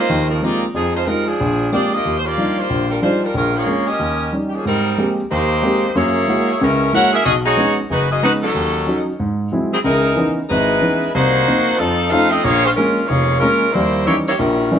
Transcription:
Already playing: A#3 D#4
0.00 F4 C5
0.09 D#2 D#3
0.30 F3 C4 D#4 A#4
0.42 G#3 A#3 C4 D#4 F4 G4 D5
0.75 F2 F3 C4 D#4 G#4
0.95 G#3 D#4 F4 C5
1.06 G3 G#3 C4 D#4 F4 A#4
1.27 F3 C4 D4 G#4
1.41 A#1
1.72 G#3 A#3 C4 D4 F4 G4 G#4 D5
1.93 A#3 F4 G4 D#5
2.05 D#2
2.18 C5
2.26 A#3 F4 G4 D5
2.38 G3 D4 D#4 F4
2.59 A#3 F4 G4 C5
2.70 A#1
2.90 G3 D4 F4 A#4
3.02 G3 G#3 D4 D#4 F4 C5
3.23 G3 D4 F4 A#4
3.34 A#1 G#3 C#4 F4 A#4
3.56 A#3 F4 G#4 C#5
3.66 G#3 A#3 C#4
3.88 C#4 G4 A#4 D#5
4.00 D#2
4.33 G3 C#4 D#4
4.48 G4
4.55 F3 A#3 C#4 G#4
4.65 G#2 G3 C4 D#4 A#4
4.98 G#3 A#3 C4 G4
5.31 D#2 A#3 D#4 G4 C5
5.62 G#3 A#3 C4 G4
5.95 F#2 A#3 E4 G#4 C#5
6.28 G#3 A#3 E4 F#4
6.61 C#2 C#3 G#3 C#4 E4 A#4
6.93 G#3 A#3 E4 F#4 A#4 C#5 F#5
7.13 C#4 G#4 A#4 E5
7.26 B1 C#4 F#4 G#4 D#5
7.46 G#3 D#4 F#4 C#5
7.57 G#3 B3 C#4 D#4
7.90 F#1 G#3 D#4 F#4 B4
8.11 C#4 F#4 G#4 D#5
8.22 G#3 B3 C#4 D#4 F#4 B4
8.42 F#3 C#4 D#4 A4
8.55 D#2
8.87 F#3 C#4 D#4
9.20 G#2
9.52 F#3 G#3 C4 E4
9.72 F#3 C4 E4 G#4
9.84 C#2 C#3 G#3 D#4 E4 A#4
10.16 E3 B3 C#4 D#4
10.49 G#1 G#3 D#4 E4 B4
10.81 E3 B3 C#4 D#4
11.15 C2 A#3 D#4 F#4 C5
11.48 A#3 C4 D#4
11.78 F2 F3 C4 D#4 A4
12.11 F3 A3 C#4 D#4 A4 C5 F5
12.31 C4 F4 A4 D#5
12.43 A#1 A#3 F4 G#4 C#5
12.65 G#3 C#4 F4 C5
12.76 G#3 A#3 C#4 F4 A#4
13.07 F1 A#3 F4 G#4 C#5
13.40 G#3 A#3 C#4 F4 A#4
13.73 D#2 G3 A#3 E4 G4 C5
14.06 E3 G3 A#3 C#4 D#4 E4 G4 C#5
14.27 A#3 E4 G4 C#5
14.38 A#1 A#2 G3 C#4 E4 A#4
14.71 E3 G3 C#4 D#4

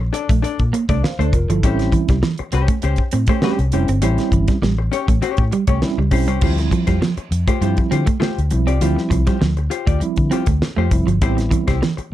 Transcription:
0.13 D4 A4 D5, muted clean electric guitar stroke, closed hi-hat
0.29 A#1 A3, muted hollow-body jazz guitar stroke, kick, closed hi-hat
0.42 D4 A4 D5, muted clean electric guitar stroke, muted fingered electric bass stroke, closed hi-hat
0.59 A#2, kick, closed hi-hat
0.73 A#3, muted hollow-body jazz guitar stroke, closed hi-hat
0.89 C2 A3 D4 A4 D5, kick, closed hi-hat
1.03 C5 F5, muted hollow-body jazz guitar stroke, snare
1.19 D2 A3 D4 A4 C5 D5, closed hi-hat
1.33 F1 F4 A#4, muted clean electric guitar stroke, muted hollow-body jazz guitar stroke, kick, closed hi-hat
1.50 G1 F3 E4 A4, muted hollow-body jazz guitar stroke, closed hi-hat
1.63 A1 G3 C4 C#4 E4 G4 C5, kick, closed hi-hat
1.79 muted clean electric guitar stroke, snare, closed hi-hat
1.92 E3, kick, closed hi-hat
2.08 C2 G3, muted hollow-body jazz guitar stroke, kick, snare, closed hi-hat
2.23 E3, snare
2.38 muted hollow-body jazz guitar stroke, muted fingered electric bass stroke, closed hi-hat
2.52 C2 C#4 G4 C5, muted clean electric guitar stroke, closed hi-hat
2.68 A3, muted hollow-body jazz guitar stroke, kick, closed hi-hat
2.82 C#2 C#4 G4 C5, muted clean electric guitar stroke, closed hi-hat
2.96 kick, closed hi-hat
3.11 A2 C4, muted hollow-body jazz guitar stroke, closed hi-hat
3.27 A3 G4 C5, kick, closed hi-hat
3.31 C#4
3.42 G3 A3 C4 C#4 G4 C5, snare
3.59 C2, muted hollow-body jazz guitar stroke, closed hi-hat
3.72 F1 G3 C4 C#4 E4 G4 C5, muted clean electric guitar stroke, closed hi-hat
3.88 G1 C4, muted hollow-body jazz guitar stroke, closed hi-hat
4.02 A1 G3 C4 C#4 E4 G4 C5, closed hi-hat
4.18 muted clean electric guitar stroke, snare, closed hi-hat
4.32 G1 E3, kick, closed hi-hat
4.48 G3, muted hollow-body jazz guitar stroke, kick, snare, closed hi-hat
4.62 A1 G3, snare
4.78 muted hollow-body jazz guitar stroke
4.92 C#4 G4 C#5, muted clean electric guitar stroke, closed hi-hat
5.07 A1 A3, muted hollow-body jazz guitar stroke, kick, closed hi-hat
5.22 C#4 G4 C#5, muted clean electric guitar stroke, muted fingered electric bass stroke, closed hi-hat
5.37 A2, kick, closed hi-hat
5.51 G3, muted hollow-body jazz guitar stroke, closed hi-hat
5.67 C2 A3 C#4 G4 C#5, kick, closed hi-hat
5.82 G3 C4 C#4 E4, muted hollow-body jazz guitar stroke, snare
5.98 C#2 G3, muted hollow-body jazz guitar stroke
6.11 B1 G3 C4 C#4 E4 G4 C5, muted clean electric guitar stroke, kick, open hi-hat
6.27 C2 G3 C#4 G4 C5, closed hi-hat
6.41 D2 E3 G3 C4 E4 F4 G4 C5, kick, crash
6.49 F3
6.58 muted hollow-body jazz guitar stroke, muted clean electric guitar stroke, snare, closed hi-hat
6.71 F3, muted hollow-body jazz guitar stroke, kick, closed hi-hat
6.87 F2 G3 F4 G4 C5, kick, snare, closed hi-hat
7.01 F3, muted hollow-body jazz guitar stroke, snare
7.17 muted fingered electric bass stroke, muted hollow-body jazz guitar stroke, closed hi-hat
7.31 F2, muted clean electric guitar stroke, closed hi-hat
7.48 A3 F4 G4 C5, kick, closed hi-hat
7.61 G2 F3 G3 C4 E4 F4 G4 C5, muted clean electric guitar stroke, closed hi-hat
7.77 muted hollow-body jazz guitar stroke, kick, closed hi-hat
7.91 D3 C4 F4 G4 C5, closed hi-hat
8.06 A3, muted hollow-body jazz guitar stroke, kick, closed hi-hat
8.20 A3 F4 G4 C5, snare
8.38 D2, closed hi-hat
8.50 B1 F3 G3 C4 E4, muted clean electric guitar stroke, muted hollow-body jazz guitar stroke, closed hi-hat
8.67 C2 C4 F4 G4 D5, closed hi-hat
8.81 D2 F3 G3 C4 E4 F4 G4 C5, closed hi-hat
8.96 muted clean electric guitar stroke, snare
9.10 C2 F3, muted hollow-body jazz guitar stroke, kick, closed hi-hat
9.27 G3 F4 G4 C5, kick, snare, closed hi-hat
9.41 D2 F3, muted hollow-body jazz guitar stroke, snare
9.57 muted hollow-body jazz guitar stroke, closed hi-hat
9.70 F4 G4 C5, muted clean electric guitar stroke, closed hi-hat
9.87 D2 A3 F4 G4 D5, kick, closed hi-hat
10.00 F3 G3 C4 E4, muted clean electric guitar stroke, muted fingered electric bass stroke, muted hollow-body jazz guitar stroke, closed hi-hat
10.16 D3, kick, closed hi-hat
10.31 C4 F4 G4 C5, closed hi-hat
10.46 D2 A3, muted hollow-body jazz guitar stroke, kick, closed hi-hat
10.62 muted hollow-body jazz guitar stroke, snare
10.77 F2 A3 F4 G4 C5
10.91 F1 F3 G3 C4 E4, muted clean electric guitar stroke, muted hollow-body jazz guitar stroke, kick, closed hi-hat
11.06 G1 F3, muted hollow-body jazz guitar stroke, closed hi-hat
11.22 A1 G3 B3 C4 E4 G4 C5, kick, closed hi-hat
11.37 muted clean electric guitar stroke, muted hollow-body jazz guitar stroke, snare, closed hi-hat
11.51 E3, muted hollow-body jazz guitar stroke, kick, closed hi-hat
11.68 C2 G3 E4 G4 C5, kick, snare, closed hi-hat
11.82 E3, muted hollow-body jazz guitar stroke, snare
11.97 muted hollow-body jazz guitar stroke, muted fingered electric bass stroke, closed hi-hat

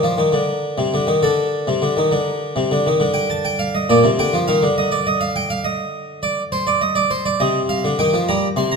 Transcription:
Already playing: D5
0.03 F3
0.18 D#3
0.33 D3
0.78 C3
0.94 D3
1.07 D#3
1.22 D3 A4
1.67 C3
1.82 D3
1.97 D#3
2.11 D3
2.56 C3
2.71 D3
2.87 D#3
3.00 D3
3.14 G5
3.30 A5
3.45 G5
3.59 F5
3.75 D#5
3.90 A#2 D5
4.04 C3
4.19 D3 G5
4.33 F3
4.48 D#3 F5
4.63 D3
4.78 D#5
4.92 D5
5.07 D#5
5.21 F5
5.36 G5
5.50 F5
5.64 D#5
6.23 D5
6.52 C5
6.67 D5
6.81 D#5
6.95 D5
7.11 C5
7.26 D5
7.40 C3 D#5
7.69 F5
7.84 D3
7.99 D#3 G5
8.14 F3
8.29 G3 A#5
8.56 C3 C6
8.72 A#5

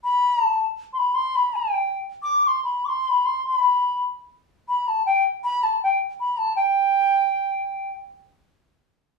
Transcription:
0.04 B5
0.45 A5
0.93 C6
0.98 B5
1.15 C6
1.36 B5
1.56 G5
2.23 D6
2.43 D6
2.47 C6
2.64 B5
2.85 C6 D6
3.06 B5 C6
3.25 C6
3.47 B5
4.69 B5
4.88 A5
5.06 G5
5.44 B5
5.63 A5
5.83 G5
6.20 B5
6.38 A5
6.56 G5

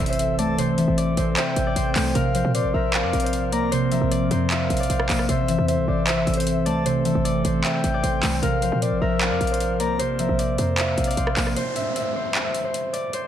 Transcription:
Already playing: C3 E3 C4 A4 C5 D5 E5, impact
0.00 A1
0.06 C5, closed hi-hat
0.13 closed hi-hat
0.19 closed hi-hat
0.38 C2 A3 D5 A5, closed hi-hat
0.58 C3 C5, closed hi-hat
0.78 E3 E5, closed hi-hat
0.88 A1
0.97 D5, closed hi-hat
1.17 A1 C5, closed hi-hat
1.37 C5 E5 G5, clap, closed hi-hat
1.56 A1, closed hi-hat
1.67 D5
1.76 A1 C5, closed hi-hat
1.96 C2 A3, clap, open hi-hat
2.15 A#1 C3 F3 C4 A#4 F5, closed hi-hat
2.35 F3 C5, closed hi-hat
2.45 A#2
2.54 C5 D5, closed hi-hat
2.64 A1
2.74 A#1 A#4 E5
2.94 C5 F5, clap, closed hi-hat
3.03 F2 D5
3.13 A#1, closed hi-hat
3.20 C5, closed hi-hat
3.26 closed hi-hat
3.33 closed hi-hat
3.52 C2 A#3 D5 A#5, closed hi-hat
3.72 C3 C5, closed hi-hat
3.77 A#1
3.92 F3 E5, closed hi-hat
4.02 A#1
4.11 D5, closed hi-hat
4.31 F2 C5, closed hi-hat
4.50 C5 E5 F5, clap, closed hi-hat
4.70 A#1, closed hi-hat
4.77 D5, closed hi-hat
4.83 closed hi-hat
4.89 A#1 C5, closed hi-hat
5.00 cross-stick
5.09 A#1 A#3, clap, open hi-hat
5.19 cross-stick
5.29 A1 C3 E3 A4 C5 E5, closed hi-hat
5.48 E3 E5, closed hi-hat
5.58 E2
5.68 C5 E5, closed hi-hat
5.78 C2
5.88 A1 C5 D5
6.07 A#1 C5 E5, clap, closed hi-hat
6.17 A1 E5
6.27 A1, closed hi-hat
6.34 C5, closed hi-hat
6.40 closed hi-hat
6.47 closed hi-hat
6.66 C2 A3 D5 A5, closed hi-hat
6.85 C3 C5, closed hi-hat
7.05 E3 E5, closed hi-hat
7.15 A1
7.25 D5, closed hi-hat
7.45 A1 C5, closed hi-hat
7.64 C5 E5 G5, clap, closed hi-hat
7.84 A1, closed hi-hat
7.94 D5
8.03 A1 C5, closed hi-hat
8.23 C2 A3, clap, open hi-hat
8.42 A#1 C3 F3 A#4 F5, closed hi-hat
8.62 F3 C5, closed hi-hat
8.72 A#2
8.82 C5 D5, closed hi-hat
8.92 A1
9.01 A#1 A#4 E5
9.21 C5 F5, clap, closed hi-hat
9.31 F2 D5
9.41 A#1, closed hi-hat
9.47 C5, closed hi-hat
9.54 closed hi-hat
9.60 closed hi-hat
9.80 C2 A#3 D5 A#5, closed hi-hat
9.99 C3 C5, closed hi-hat
10.05 A#1
10.19 F3 E5, closed hi-hat
10.29 A#1
10.39 D5, closed hi-hat
10.58 F2 C5, closed hi-hat
10.78 C5 E5 F5, clap, closed hi-hat
10.98 A#1, closed hi-hat
11.04 D5, closed hi-hat
11.11 closed hi-hat
11.17 A#1 C5, closed hi-hat
11.27 cross-stick
11.37 A#1 A#3, clap, open hi-hat
11.47 cross-stick
11.56 C5, closed hi-hat, downlifter
11.76 E5, closed hi-hat
11.96 E5, closed hi-hat
12.16 C5
12.35 clap, closed hi-hat
12.44 E5
12.54 closed hi-hat
12.65 C5
12.74 closed hi-hat
12.93 D5, closed hi-hat
13.13 C5, closed hi-hat

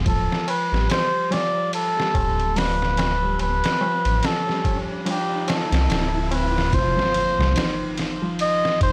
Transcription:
0.05 D1 F3 A4, kick, ride, riser, tabla na
0.30 snare, tabla na
0.48 B4, ride, tabla na
0.72 A1 G3, snare, tabla na
0.88 C5, snare, ride, tabla na
1.30 F3 D5, snare, ride, tabla na
1.56 tabla na
1.72 A4, ride, tabla na
1.97 G3, snare, tabla na
2.14 D1, kick, ride, tabla na
2.39 ride, tabla na
2.56 F3 B4, snare, open hi-hat, tabla na
2.81 snare, tabla na
2.97 snare, ride, tabla na
3.22 G3, tabla na
3.39 D1 B4, ride, tabla na
3.64 snare, ride
3.81 F3, tabla na
4.05 A1, ride, tabla na
4.23 A4, snare, ride, tabla na
4.47 G3, snare, tabla na
4.64 kick, ride, tabla na
4.89 tabla na
5.05 F3 G4, ride, tabla na
5.47 F4 A4, snare, ride, tabla na
5.71 C2 C4, snare, ride, tabla na
5.89 D1, snare, ride, tabla na
6.14 tabla na
6.30 C4 B4, ride, tabla na
6.55 snare, tabla na
6.72 F1 C5, kick, ride, impact
6.97 F3, snare
7.14 ride
7.39 C2, snare
7.56 D#3, snare, ride
7.98 snare, ride
8.22 F3
8.39 D#5, ride
8.65 snare
8.81 F1 D#3 C5, kick, ride

